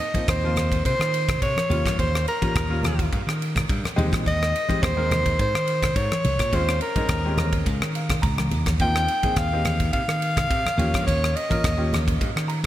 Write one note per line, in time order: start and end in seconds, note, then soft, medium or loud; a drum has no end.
0.00 0.24 D#5 loud
0.00 ride medium
0.14 0.32 F3 medium
0.14 0.32 A#3 medium
0.14 0.33 C4 medium
0.14 0.32 D#4 medium
0.14 muted slap bass stroke soft
0.14 kick medium
0.14 ride medium
0.14 high conga medium
0.28 0.81 D#2 medium
0.28 0.82 C5 medium
0.28 kick loud
0.28 cross-stick medium
0.28 ride medium
0.44 1.15 F3 medium
0.44 1.16 A#3 medium
0.44 1.16 C4 medium
0.44 1.16 F4 medium
0.56 cross-stick medium
0.56 ride medium
0.56 low conga medium
0.72 kick medium
0.72 ride medium
0.85 0.99 C3 loud
0.85 1.38 C5 medium
0.85 kick medium
0.85 ride medium
0.99 1.38 D#3 medium
0.99 cross-stick medium
1.14 ride medium
1.29 kick medium
1.29 cross-stick medium
1.29 ride medium
1.29 low conga medium
1.42 1.55 C3 medium
1.42 1.95 C#5 medium
1.42 kick medium
1.42 ride medium
1.55 muted slap bass stroke soft
1.55 cross-stick medium
1.55 high conga medium
1.69 1.84 D#2 medium
1.69 2.27 G3 medium
1.69 2.27 A#3 medium
1.69 2.27 C#4 medium
1.69 2.27 F4 medium
1.69 ride medium
1.69 high conga medium
1.69 low conga medium
1.85 1.98 G2 medium
1.85 kick medium
1.85 cross-stick medium
1.85 ride medium
1.85 high conga medium
1.99 2.25 D#2 medium
1.99 2.25 C5 medium
1.99 kick medium
1.99 ride medium
2.15 cross-stick medium
2.28 3.09 A#4 medium
2.28 ride medium
2.42 2.59 G3 medium
2.42 2.60 A#3 medium
2.42 2.60 C#4 medium
2.42 2.59 F4 medium
2.42 muted slap bass stroke soft
2.42 kick medium
2.42 ride medium
2.42 high conga medium
2.55 3.08 D#2 medium
2.55 kick loud
2.55 cross-stick medium
2.55 ride medium
2.69 3.42 G3 medium
2.69 3.42 A#3 medium
2.69 3.42 C#4 medium
2.69 3.42 F4 medium
2.83 cross-stick medium
2.83 ride medium
2.83 high conga medium
2.83 low conga medium
2.99 kick medium
2.99 ride medium
3.13 3.26 G2 medium
3.13 kick medium
3.13 ride medium
3.27 3.65 D#3 medium
3.27 cross-stick medium
3.42 ride medium
3.55 kick medium
3.55 cross-stick medium
3.55 ride medium
3.55 low conga medium
3.69 3.83 G2 medium
3.69 kick loud
3.69 ride medium
3.84 muted slap bass stroke soft
3.84 cross-stick medium
3.84 high conga medium
3.96 4.11 D#2 medium
3.96 4.54 G#3 medium
3.96 4.54 C4 medium
3.96 4.54 D#4 medium
3.96 4.54 G4 medium
3.96 ride medium
3.96 high conga medium
3.96 low conga medium
4.12 4.25 A#2 medium
4.12 kick medium
4.12 cross-stick medium
4.12 ride medium
4.12 high conga medium
4.26 4.52 D#2 loud
4.26 4.84 D#5 loud
4.26 kick medium
4.26 ride medium
4.43 cross-stick medium
4.56 ride medium
4.68 4.86 G#3 medium
4.68 4.87 C4 medium
4.68 4.87 D#4 medium
4.68 4.87 G4 medium
4.68 muted slap bass stroke soft
4.68 kick medium
4.68 ride medium
4.68 high conga medium
4.82 5.35 D#2 medium
4.82 5.39 C5 medium
4.82 kick loud
4.82 cross-stick medium
4.82 ride medium
4.97 5.69 G#3 medium
4.97 5.69 C4 medium
4.97 5.69 D#4 medium
4.97 5.69 A#4 medium
5.11 cross-stick medium
5.11 ride medium
5.11 high conga medium
5.11 low conga medium
5.26 kick medium
5.26 ride medium
5.39 5.53 G#2 medium
5.39 5.98 C5 medium
5.39 kick medium
5.39 ride medium
5.55 5.93 D#3 medium
5.55 cross-stick medium
5.68 ride medium
5.82 kick medium
5.82 cross-stick medium
5.82 ride medium
5.82 low conga medium
5.96 6.10 G#2 medium
5.96 6.56 C#5 medium
5.96 kick loud
5.96 ride medium
6.11 muted slap bass stroke soft
6.11 cross-stick medium
6.11 high conga medium
6.24 6.38 C2 medium
6.24 ride medium
6.24 high conga medium
6.24 low conga medium
6.39 6.52 A#2 medium
6.39 kick medium
6.39 cross-stick medium
6.39 ride medium
6.52 6.79 D#2 medium
6.52 6.80 G#3 medium
6.52 6.80 C4 medium
6.52 6.80 C#4 medium
6.52 6.80 F4 medium
6.52 6.82 C5 medium
6.52 kick medium
6.52 ride medium
6.69 cross-stick medium
6.81 7.63 A#4 medium
6.81 ride medium
6.96 7.14 G#3 medium
6.96 7.14 C4 medium
6.96 7.14 C#4 medium
6.96 7.14 D#4 medium
6.96 muted slap bass stroke soft
6.96 kick medium
6.96 ride medium
6.96 high conga medium
7.09 7.62 D#2 medium
7.09 kick loud
7.09 cross-stick medium
7.09 ride medium
7.25 7.97 G#3 medium
7.25 7.97 C4 medium
7.25 7.98 C#4 medium
7.25 7.98 G4 medium
7.38 cross-stick medium
7.38 ride medium
7.38 high conga medium
7.38 low conga medium
7.53 kick medium
7.53 ride medium
7.66 7.80 C#2 loud
7.66 kick medium
7.66 ride medium
7.82 8.20 D#3 medium
7.82 cross-stick medium
7.95 8.22 F5 medium
7.95 ride medium
8.09 kick medium
8.09 cross-stick medium
8.09 ride medium
8.09 low conga medium
8.22 8.49 C#2 medium
8.22 8.76 A#5 medium
8.22 kick loud
8.22 ride medium
8.38 cross-stick medium
8.38 high conga medium
8.51 8.78 D#2 medium
8.51 ride medium
8.51 high conga medium
8.51 low conga medium
8.66 kick medium
8.66 cross-stick medium
8.66 ride medium
8.66 high conga medium
8.80 9.06 D#2 medium
8.80 9.08 A#3 medium
8.80 9.08 C4 medium
8.80 9.08 D#4 medium
8.80 9.08 F4 medium
8.80 9.39 G5 loud
8.80 kick medium
8.80 ride medium
8.96 cross-stick medium
9.08 ride medium
9.23 9.41 A#3 medium
9.23 9.41 C4 medium
9.23 9.41 D#4 medium
9.23 9.41 G#4 medium
9.23 muted slap bass stroke soft
9.23 kick medium
9.23 ride medium
9.23 high conga medium
9.36 9.89 D#2 medium
9.36 9.92 F5 medium
9.36 kick loud
9.36 cross-stick medium
9.36 ride medium
9.53 10.24 A#3 medium
9.53 10.25 C4 medium
9.53 10.25 D#4 medium
9.53 10.24 G4 medium
9.65 cross-stick medium
9.65 ride medium
9.65 high conga medium
9.65 low conga medium
9.80 kick medium
9.80 ride medium
9.93 10.07 C3 loud
9.93 11.03 F5 loud
9.93 kick medium
9.93 ride medium
10.08 10.47 D#3 medium
10.08 cross-stick medium
10.22 ride medium
10.37 kick medium
10.37 cross-stick medium
10.37 ride medium
10.37 low conga medium
10.50 10.64 C3 medium
10.50 kick loud
10.50 ride medium
10.65 muted slap bass stroke soft
10.65 cross-stick medium
10.65 high conga medium
10.77 10.92 D#2 medium
10.77 11.35 A#3 medium
10.77 11.35 C#4 medium
10.77 11.35 F4 medium
10.77 11.35 G4 medium
10.77 ride medium
10.77 high conga medium
10.77 low conga medium
10.94 11.06 G2 medium
10.94 kick medium
10.94 cross-stick medium
10.94 ride medium
10.94 high conga medium
11.07 11.34 D#2 medium
11.07 11.38 C#5 medium
11.07 kick medium
11.07 ride medium
11.24 cross-stick medium
11.36 12.21 D#5 medium
11.36 ride medium
11.49 11.68 A#3 medium
11.49 11.68 C#4 medium
11.49 11.68 F4 medium
11.49 11.68 A#4 medium
11.49 muted slap bass stroke soft
11.49 kick medium
11.49 ride medium
11.49 high conga medium
11.64 12.17 D#2 medium
11.64 kick loud
11.64 cross-stick medium
11.64 ride medium
11.77 12.50 A#3 medium
11.77 12.50 C#4 medium
11.77 12.50 F4 medium
11.77 12.50 G4 medium
11.93 cross-stick medium
11.93 ride medium
11.93 high conga medium
11.93 low conga medium
12.08 kick medium
12.08 ride medium
12.21 12.35 G2 loud
12.21 kick medium
12.21 ride medium
12.36 12.66 D#3 medium
12.36 cross-stick medium
12.48 12.66 A#5 medium
12.48 ride medium